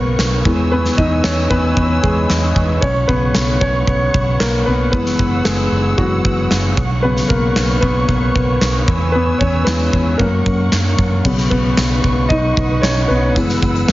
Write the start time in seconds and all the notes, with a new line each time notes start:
Already playing: B1 C#3 F#3 A#3 B3 A#4 B4 C#5 F#5 C#6
0.19 B1, snare, clap
0.45 E2 E3 G#3 B3 G#5 E6, kick
0.72 B3 B4
0.85 snare
0.97 E2 D#4 D#5, kick
1.24 E2 C#4 C#5, snare, clap
1.50 E2 B3 B4, kick
1.77 E2, kick
2.03 E2 G#3 G#4, kick
2.30 E2, snare, clap
2.56 E2, kick
2.81 B1 C#4 C#5 F#5 C#6, kick
3.07 B1 C#3 F#3 B3 B4, kick
3.35 B1, snare, clap
3.61 B1 C#4 C#5, kick
3.87 B1, kick
4.14 B1, kick
4.40 B1 A#3 A#4, snare, clap
4.66 B1 B3 B4
4.92 F#1 E3 G#3 B3 B4 E6, kick
5.06 snare
5.19 F#1, kick
5.44 F#1 G#3 G#4, snare, clap
5.72 F#1
5.98 F#1 E3 F#3 G#3 B3 F#4, kick
6.25 F#1, kick
6.51 F#1, snare, clap
6.77 B1 C#5 C#6, kick
7.02 C#3 F#3 B3 B4
7.17 snare
7.29 B1 A#3 A#4, kick
7.56 B1, snare, clap
7.81 B1 B3 B4, kick
8.09 B1, kick
8.35 B1, kick
8.61 B1, snare, clap
8.88 E2 G#5 E6, kick
9.12 B3 B4
9.38 E2 C#4 C#5, kick
9.64 E2 E3 G#3 B3 B4, snare, clap
9.93 E2, kick
10.18 F#2 F#3 A#3 C#4 A#4 F#5 C#6, kick
10.46 F#2, kick
10.72 F#2, snare, clap
10.99 F#2, kick
11.24 B1 C#3 F#3 B3 B4 F#5 C#6, kick, crash
11.38 snare
11.50 B1 B3 B4, kick
11.77 B1, snare, clap
12.04 B1, kick
12.29 B1 D#4 D#5, kick
12.57 B1, kick
12.82 B1 C#4 C#5, snare, clap
13.08 B1 B3 B4
13.36 F#1 E3 G#3 B3 E6, kick, closed hi-hat
13.49 snare, closed hi-hat
13.62 F#1, kick, closed hi-hat
13.76 closed hi-hat
13.88 F#1, snare, closed hi-hat